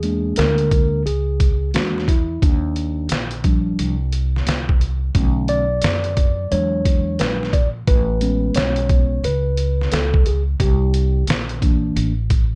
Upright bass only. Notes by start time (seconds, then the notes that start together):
Already playing: E2
0.38 D2
1.06 C#2
1.74 E2
2.42 D#2
3.11 A#1
3.79 C2
4.47 C2
5.15 B1
5.83 F#2
6.52 E2
7.20 A#1
7.88 A1
8.55 B1
9.24 C#2
9.92 C#2
10.60 C2
11.28 A#1
11.96 A1